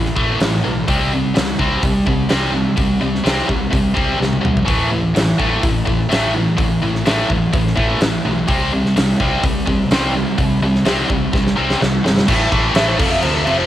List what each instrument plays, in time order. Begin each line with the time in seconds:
Already playing: distorted electric guitar A2 E3
0.06 snare
0.16 fingered electric bass A1, distorted electric guitar A2 E3 A3, kick
0.40 fingered electric bass A1, distorted electric guitar A2 E3, snare, open hi-hat
0.64 fingered electric bass B1, distorted electric guitar A2 E3
0.88 fingered electric bass C2, distorted electric guitar C3 G3 C4, kick, open hi-hat
1.13 distorted electric guitar C3 G3
1.34 fingered electric bass C2, distorted electric guitar C3 G3, snare, open hi-hat
1.59 fingered electric bass C2, distorted electric guitar C3 G3 C4, kick
1.82 fingered electric bass C2, distorted electric guitar C3 G3, kick, open hi-hat
2.06 fingered electric bass C2, distorted electric guitar C3 G3, kick
2.29 fingered electric bass C2, distorted electric guitar C3 G3 C4, snare, open hi-hat
2.53 distorted electric guitar C3 G3
2.76 fingered electric bass C2, distorted electric guitar C3 G3, kick, open hi-hat
3.01 fingered electric bass C2, distorted electric guitar C3 G3
3.15 snare
3.24 fingered electric bass C2, distorted electric guitar C3 G3 C4, snare, open hi-hat
3.48 fingered electric bass C2, distorted electric guitar C3 G3, kick
3.70 fingered electric bass C2, distorted electric guitar C3 G3, kick, open hi-hat
3.94 fingered electric bass C2, distorted electric guitar C3 G3 C4, kick
4.18 fingered electric bass C2, distorted electric guitar C3 G3
4.22 snare
4.33 high tom
4.42 fingered electric bass B1, distorted electric guitar C3 G3, mid tom
4.57 floor tom
4.66 fingered electric bass A1, distorted electric guitar A2 E3 A3, kick, open hi-hat
4.91 distorted electric guitar A2 E3
5.15 fingered electric bass A1, distorted electric guitar A2 E3, snare, open hi-hat
5.38 fingered electric bass A1, distorted electric guitar A2 E3 A3, kick
5.63 fingered electric bass A1, distorted electric guitar A2 E3, kick, open hi-hat
5.85 fingered electric bass A1, distorted electric guitar A2 E3, kick
6.09 fingered electric bass A1, distorted electric guitar A2 E3 A3, snare, open hi-hat
6.34 distorted electric guitar A2 E3
6.57 fingered electric bass A1, distorted electric guitar A2 E3, kick, open hi-hat
6.82 fingered electric bass A1, distorted electric guitar A2 E3
6.95 snare
7.06 fingered electric bass A1, distorted electric guitar A2 E3 A3, snare, open hi-hat
7.29 fingered electric bass A1, distorted electric guitar A2 E3, kick
7.53 fingered electric bass A1, distorted electric guitar A2 E3, kick, open hi-hat
7.67 snare
7.76 fingered electric bass A1, distorted electric guitar A2 E3 A3, kick
8.01 fingered electric bass A1, distorted electric guitar A2 E3, snare, open hi-hat
8.25 fingered electric bass B1, distorted electric guitar A2 E3
8.48 fingered electric bass C2, distorted electric guitar C3 G3 C4, kick, open hi-hat
8.72 distorted electric guitar C3 G3
8.86 snare
8.96 fingered electric bass C2, distorted electric guitar C3 G3, snare, open hi-hat
9.19 fingered electric bass C2, distorted electric guitar C3 G3 C4, kick
9.43 fingered electric bass C2, distorted electric guitar C3 G3, kick, open hi-hat
9.66 fingered electric bass C2, distorted electric guitar C3 G3, kick
9.90 fingered electric bass C2, distorted electric guitar C3 G3 C4, snare, open hi-hat
10.14 distorted electric guitar C3 G3
10.38 fingered electric bass C2, distorted electric guitar C3 G3, kick, open hi-hat
10.62 fingered electric bass C2, distorted electric guitar C3 G3
10.75 snare
10.85 fingered electric bass C2, distorted electric guitar C3 G3 C4, snare, open hi-hat
11.09 fingered electric bass C2, distorted electric guitar C3 G3, kick
11.33 fingered electric bass C2, distorted electric guitar C3 G3, kick, snare
11.47 snare
11.56 fingered electric bass C2, distorted electric guitar C3 G3 C4
11.70 snare
11.81 fingered electric bass C2, distorted electric guitar C3 G3, snare
12.04 fingered electric bass G1, distorted electric guitar C3 G3, snare
12.18 snare
12.28 fingered electric bass A1, distorted electric guitar A2 E3 A3, kick, crash
12.51 fingered electric bass A1, distorted electric guitar A2 E3 A3, kick, crash
12.74 fingered electric bass A1, distorted electric guitar A2 E3 A3, lead electric guitar E5, snare, crash
12.88 lead electric guitar C5
12.98 fingered electric bass F1, distorted electric guitar F2 C3 F3, lead electric guitar A4, kick, crash
13.11 lead electric guitar E5
13.22 fingered electric bass D2, distorted electric guitar F2 C3 F3, lead electric guitar C5, crash
13.34 lead electric guitar A4
13.44 fingered electric bass F1, distorted electric guitar F2 C3 F3, lead electric guitar E5, crash
13.57 lead electric guitar C5